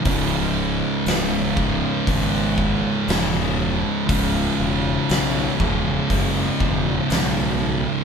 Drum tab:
HH |o-o-o-o-|o-o-o-o-|
SD |--o---o-|--o---o-|
BD |o--ooo--|o--ooo--|